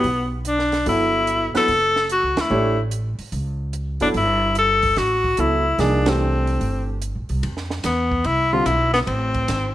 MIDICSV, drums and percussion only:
0, 0, Header, 1, 2, 480
1, 0, Start_track
1, 0, Tempo, 410678
1, 1010, Time_signature, 4, 2, 24, 8
1, 11392, End_track
2, 0, Start_track
2, 0, Title_t, "Drums"
2, 44, Note_on_c, 9, 46, 36
2, 161, Note_off_c, 9, 46, 0
2, 525, Note_on_c, 9, 42, 49
2, 642, Note_off_c, 9, 42, 0
2, 691, Note_on_c, 9, 38, 25
2, 807, Note_off_c, 9, 38, 0
2, 844, Note_on_c, 9, 46, 31
2, 851, Note_on_c, 9, 38, 35
2, 961, Note_off_c, 9, 46, 0
2, 968, Note_off_c, 9, 38, 0
2, 1007, Note_on_c, 9, 46, 44
2, 1124, Note_off_c, 9, 46, 0
2, 1488, Note_on_c, 9, 42, 49
2, 1605, Note_off_c, 9, 42, 0
2, 1810, Note_on_c, 9, 46, 36
2, 1816, Note_on_c, 9, 38, 51
2, 1927, Note_off_c, 9, 46, 0
2, 1932, Note_off_c, 9, 38, 0
2, 1965, Note_on_c, 9, 46, 40
2, 2082, Note_off_c, 9, 46, 0
2, 2292, Note_on_c, 9, 38, 32
2, 2409, Note_off_c, 9, 38, 0
2, 2448, Note_on_c, 9, 42, 47
2, 2565, Note_off_c, 9, 42, 0
2, 2767, Note_on_c, 9, 51, 51
2, 2773, Note_on_c, 9, 38, 68
2, 2884, Note_off_c, 9, 51, 0
2, 2890, Note_off_c, 9, 38, 0
2, 3405, Note_on_c, 9, 42, 52
2, 3522, Note_off_c, 9, 42, 0
2, 3725, Note_on_c, 9, 46, 38
2, 3842, Note_off_c, 9, 46, 0
2, 3883, Note_on_c, 9, 46, 39
2, 4000, Note_off_c, 9, 46, 0
2, 4361, Note_on_c, 9, 42, 47
2, 4478, Note_off_c, 9, 42, 0
2, 4677, Note_on_c, 9, 46, 32
2, 4794, Note_off_c, 9, 46, 0
2, 4841, Note_on_c, 9, 46, 39
2, 4958, Note_off_c, 9, 46, 0
2, 5321, Note_on_c, 9, 42, 45
2, 5437, Note_off_c, 9, 42, 0
2, 5639, Note_on_c, 9, 46, 39
2, 5647, Note_on_c, 9, 36, 58
2, 5756, Note_off_c, 9, 46, 0
2, 5764, Note_off_c, 9, 36, 0
2, 5801, Note_on_c, 9, 46, 38
2, 5807, Note_on_c, 9, 38, 35
2, 5918, Note_off_c, 9, 46, 0
2, 5924, Note_off_c, 9, 38, 0
2, 6128, Note_on_c, 9, 36, 44
2, 6245, Note_off_c, 9, 36, 0
2, 6280, Note_on_c, 9, 42, 50
2, 6396, Note_off_c, 9, 42, 0
2, 6763, Note_on_c, 9, 46, 42
2, 6769, Note_on_c, 9, 38, 35
2, 6880, Note_off_c, 9, 46, 0
2, 6886, Note_off_c, 9, 38, 0
2, 7083, Note_on_c, 9, 51, 58
2, 7089, Note_on_c, 9, 38, 63
2, 7200, Note_off_c, 9, 51, 0
2, 7206, Note_off_c, 9, 38, 0
2, 7565, Note_on_c, 9, 46, 35
2, 7682, Note_off_c, 9, 46, 0
2, 7725, Note_on_c, 9, 46, 37
2, 7842, Note_off_c, 9, 46, 0
2, 8201, Note_on_c, 9, 42, 47
2, 8317, Note_off_c, 9, 42, 0
2, 8521, Note_on_c, 9, 46, 31
2, 8638, Note_off_c, 9, 46, 0
2, 8684, Note_on_c, 9, 51, 55
2, 8801, Note_off_c, 9, 51, 0
2, 8845, Note_on_c, 9, 38, 29
2, 8962, Note_off_c, 9, 38, 0
2, 9005, Note_on_c, 9, 38, 39
2, 9122, Note_off_c, 9, 38, 0
2, 9158, Note_on_c, 9, 44, 54
2, 9158, Note_on_c, 9, 51, 65
2, 9164, Note_on_c, 9, 38, 35
2, 9275, Note_off_c, 9, 44, 0
2, 9275, Note_off_c, 9, 51, 0
2, 9281, Note_off_c, 9, 38, 0
2, 9485, Note_on_c, 9, 36, 47
2, 9602, Note_off_c, 9, 36, 0
2, 9635, Note_on_c, 9, 51, 52
2, 9751, Note_off_c, 9, 51, 0
2, 10119, Note_on_c, 9, 44, 45
2, 10119, Note_on_c, 9, 51, 65
2, 10236, Note_off_c, 9, 44, 0
2, 10236, Note_off_c, 9, 51, 0
2, 10445, Note_on_c, 9, 51, 37
2, 10450, Note_on_c, 9, 38, 40
2, 10561, Note_off_c, 9, 51, 0
2, 10567, Note_off_c, 9, 38, 0
2, 10602, Note_on_c, 9, 51, 56
2, 10719, Note_off_c, 9, 51, 0
2, 10920, Note_on_c, 9, 51, 36
2, 10928, Note_on_c, 9, 36, 41
2, 11037, Note_off_c, 9, 51, 0
2, 11045, Note_off_c, 9, 36, 0
2, 11082, Note_on_c, 9, 44, 55
2, 11082, Note_on_c, 9, 51, 74
2, 11088, Note_on_c, 9, 38, 38
2, 11199, Note_off_c, 9, 44, 0
2, 11199, Note_off_c, 9, 51, 0
2, 11204, Note_off_c, 9, 38, 0
2, 11392, End_track
0, 0, End_of_file